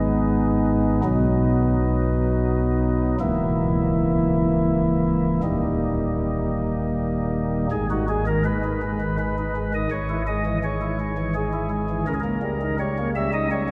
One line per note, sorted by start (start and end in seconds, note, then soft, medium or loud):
0.00 1.01 G#1 medium
0.00 1.01 G#2 loud
0.00 1.01 G#3 medium
0.00 1.01 B3 medium
0.00 1.01 D#4 medium
1.04 3.16 B1 medium
1.04 3.16 B2 medium
1.04 3.16 F#3 medium
1.04 3.16 B3 medium
1.04 3.16 D#4 medium
3.20 5.40 C#1 medium
3.20 5.40 C#2 medium
3.20 5.40 E3 medium
3.20 5.40 A#3 medium
3.20 5.40 E4 medium
5.43 7.67 D#1 medium
5.43 7.67 D#2 medium
5.43 7.67 G3 medium
5.43 7.67 A#3 medium
5.43 7.67 D#4 medium
7.71 9.87 G#1 medium
7.71 9.87 G#2 medium
7.71 7.87 G#4 loud
7.90 8.06 D#4 medium
7.90 8.06 F#4 medium
8.09 8.25 G#3 medium
8.09 8.24 G#4 loud
8.26 8.43 D#3 medium
8.26 8.42 A#4 loud
8.45 8.61 G#3 medium
8.45 9.16 B4 loud
8.64 8.80 D#4 medium
8.82 8.98 G#3 medium
9.01 9.17 D#3 medium
9.19 9.35 G#3 medium
9.19 9.71 B4 loud
9.38 9.54 D#4 medium
9.56 9.72 G#3 medium
9.74 9.88 D#3 medium
9.74 9.89 D#5 medium
9.91 12.03 G#1 medium
9.91 12.03 G#2 medium
9.91 10.22 C#5 loud
10.09 10.25 E4 medium
10.27 10.43 G#3 medium
10.27 10.58 D#5 medium
10.46 10.61 E3 medium
10.64 10.79 G#3 medium
10.64 11.33 C#5 loud
10.81 10.97 E4 medium
11.00 11.16 G#3 medium
11.18 11.33 E3 medium
11.35 11.51 G#3 medium
11.35 12.05 G#4 loud
11.53 11.69 E4 medium
11.70 11.87 G#3 medium
11.90 12.05 E3 medium
12.07 13.71 C#2 medium
12.07 13.71 C#3 medium
12.07 12.13 A#4 loud
12.14 12.20 G#4 medium
12.20 12.40 A#3 medium
12.20 12.76 A#4 loud
12.42 12.58 G3 medium
12.61 12.77 D#4 medium
12.79 12.95 G3 medium
12.79 13.09 C#5 loud
12.98 13.13 A#3 medium
13.16 13.31 G3 medium
13.16 13.30 E5 loud
13.33 13.48 D#4 medium
13.33 13.48 D#5 loud
13.51 13.67 G3 medium
13.51 13.71 C#5 loud